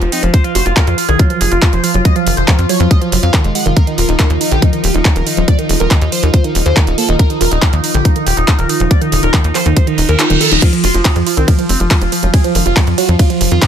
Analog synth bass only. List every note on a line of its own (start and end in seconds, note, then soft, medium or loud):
0.01 0.09 F1 medium
0.23 0.31 F1 medium
0.55 0.63 F1 medium
0.66 0.73 F1 medium
0.87 0.95 F2 medium
1.09 1.16 C2 medium
1.41 1.48 F1 loud
1.51 1.59 F1 medium
1.73 1.81 F1 medium
1.94 2.02 F1 medium
2.27 2.34 F1 loud
2.37 2.45 F1 medium
2.59 2.66 F2 medium
2.80 2.88 F2 medium
3.12 3.20 F1 medium
3.23 3.31 F2 medium
3.44 3.52 F1 medium
3.66 3.73 F1 medium
3.98 4.06 D#1 medium
4.09 4.16 D#1 medium
4.30 4.38 D#2 medium
4.52 4.59 A#1 medium
4.84 4.91 D#1 medium
4.94 5.02 D#1 medium
5.16 5.23 D#1 medium
5.37 5.45 D#1 medium
5.69 5.77 D#1 medium
5.80 5.88 D#1 medium
6.02 6.09 D#2 medium
6.23 6.31 D#2 medium
6.55 6.63 D#1 loud
6.66 6.73 D#2 medium
6.87 6.95 D#1 medium
7.09 7.16 D#1 medium
7.41 7.48 D#1 loud
7.52 7.59 D#1 medium
7.73 7.81 D#2 medium
7.94 8.02 A#1 medium
8.27 8.34 D#1 loud
8.37 8.45 D#1 medium
8.59 8.66 D#1 medium
8.80 8.88 D#1 medium
9.12 9.20 D#1 medium
9.23 9.31 D#1 medium
9.44 9.52 D#2 medium
9.66 9.73 D#2 medium
9.98 10.06 D#1 medium
10.09 10.16 D#2 medium
10.30 10.38 D#1 medium
10.52 10.59 D#1 medium
10.84 10.91 F1 loud
10.94 11.02 F1 medium
11.16 11.23 F2 medium
11.37 11.45 C2 medium
11.69 11.77 F1 loud
11.80 11.88 F1 medium
12.01 12.09 F1 medium
12.23 12.31 F1 medium
12.55 12.63 F1 loud
12.66 12.73 F1 medium
12.87 12.95 F2 medium
13.09 13.16 F2 medium
13.41 13.48 F1 loud
13.51 13.59 F2 medium